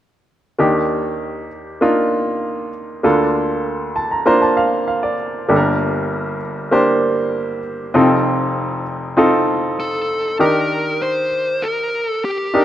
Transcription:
0.59 3.00 D#2 soft
0.59 3.00 D#3 soft
0.59 1.46 A#3 medium
0.59 1.46 D4 soft
0.59 1.47 D#4 soft
0.59 1.47 G4 medium
1.81 2.69 A#3 medium
1.81 2.69 D4 medium
1.81 2.69 D#4 soft
1.81 2.69 F4 medium
3.03 5.45 D2 medium
3.03 5.45 D3 soft
3.03 3.91 A#3 medium
3.03 3.91 D4 soft
3.03 3.92 F4 medium
3.03 3.92 A4 medium
3.96 4.10 A5 medium
4.11 4.25 A#5 soft
4.26 5.14 A#3 medium
4.26 5.14 D4 medium
4.26 5.14 F4 medium
4.26 5.14 C5 medium
4.26 4.41 A#5 medium
4.42 4.56 A5 medium
4.57 4.86 F5 medium
4.88 5.02 F5 soft
5.03 5.46 D5 medium
5.48 7.91 G1 medium
5.48 7.91 G2 soft
5.48 6.36 A#3 medium
5.48 6.36 D4 medium
5.48 6.37 G4 soft
5.48 5.56 A4 medium
5.56 6.40 A#4 medium
6.71 7.59 A#3 medium
6.71 7.59 D4 medium
6.71 7.59 G4 medium
6.71 7.60 C5 medium
7.94 10.36 F1 medium
7.94 10.36 F2 soft
7.94 8.82 C4 medium
7.94 8.82 D#4 medium
7.94 8.82 F4 medium
7.94 8.82 A4 medium
9.17 10.04 C4 medium
9.17 10.04 D#4 medium
9.17 10.05 F4 medium
9.17 10.05 A4 medium
9.80 10.36 A4 medium
10.39 11.28 D#3 soft
10.39 11.27 D4 soft
10.39 11.27 D#4 soft
10.39 11.27 G4 soft
10.39 11.27 A#4 medium
10.39 11.03 A#4 medium
11.02 11.65 C5 medium
11.63 12.08 A#4 medium
12.08 12.24 A4 medium
12.25 12.65 G4 medium
12.54 12.65 D4 medium
12.54 12.65 D#4 medium
12.54 12.65 G4 medium
12.54 12.65 A#4 medium

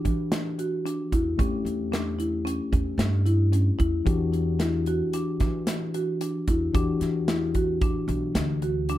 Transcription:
0.00 1.34 E3 medium
0.00 1.34 D4 medium
0.00 1.35 F#4 medium
0.00 1.35 G4 medium
0.05 0.98 E3 medium
0.05 0.52 D4 medium
0.05 kick medium
0.05 closed hi-hat medium
0.32 snare loud
0.32 closed hi-hat medium
0.59 0.82 F#4 medium
0.59 closed hi-hat medium
0.86 1.09 D4 medium
0.86 closed hi-hat medium
1.12 1.35 E2 medium
1.12 1.36 E4 medium
1.12 kick medium
1.12 closed hi-hat medium
1.38 1.62 E2 medium
1.38 4.02 A3 medium
1.38 1.86 C#4 medium
1.38 4.03 C#4 medium
1.38 4.04 G4 medium
1.38 kick loud
1.38 closed hi-hat medium
1.65 2.58 E2 medium
1.65 closed hi-hat soft
1.92 2.16 D4 medium
1.92 snare loud
1.92 closed hi-hat medium
2.19 2.42 E4 medium
2.19 closed hi-hat medium
2.45 2.69 C#4 medium
2.45 closed hi-hat medium
2.72 2.96 E2 medium
2.72 3.20 C#4 medium
2.72 kick medium
2.72 closed hi-hat soft
2.98 3.68 G2 loud
2.98 snare loud
2.98 closed hi-hat medium
3.26 3.50 E4 medium
3.26 closed hi-hat soft
3.53 3.76 C#4 medium
3.53 closed hi-hat medium
3.79 4.03 E2 medium
3.79 4.03 E4 medium
3.79 kick medium
3.79 closed hi-hat soft
4.05 5.00 E2 medium
4.05 6.70 E3 medium
4.05 4.54 D4 medium
4.05 6.70 D4 medium
4.05 6.71 F#4 medium
4.05 6.71 G4 medium
4.05 kick loud
4.05 closed hi-hat medium
4.33 closed hi-hat soft
4.59 4.83 E4 medium
4.59 snare medium
4.59 closed hi-hat medium
4.86 5.11 F#4 medium
4.86 closed hi-hat medium
5.13 5.37 D4 medium
5.13 closed hi-hat medium
5.40 6.34 E3 loud
5.40 5.88 D4 medium
5.40 kick medium
5.40 snare soft
5.40 closed hi-hat medium
5.67 snare loud
5.67 closed hi-hat medium
5.94 6.18 F#4 medium
5.94 closed hi-hat medium
6.21 6.45 D4 medium
6.21 closed hi-hat medium
6.48 6.71 E2 medium
6.48 6.72 E4 medium
6.48 kick medium
6.48 closed hi-hat medium
6.73 6.98 E2 medium
6.73 8.98 E3 medium
6.73 8.98 D4 medium
6.73 7.22 D4 medium
6.73 8.98 F#4 medium
6.73 8.98 G4 medium
6.73 kick loud
6.73 closed hi-hat medium
7.00 7.94 E2 medium
7.00 snare soft
7.00 closed hi-hat medium
7.28 7.52 E4 medium
7.28 snare loud
7.28 closed hi-hat medium
7.55 7.79 F#4 medium
7.55 kick medium
7.55 closed hi-hat medium
7.81 8.06 D4 medium
7.81 kick loud
7.81 closed hi-hat medium
8.08 8.31 B1 medium
8.08 8.57 D4 medium
8.08 closed hi-hat medium
8.35 8.98 D2 medium
8.35 snare loud
8.35 closed hi-hat medium
8.62 8.86 F#4 medium
8.62 closed hi-hat medium
8.89 8.98 D4 medium
8.89 closed hi-hat medium

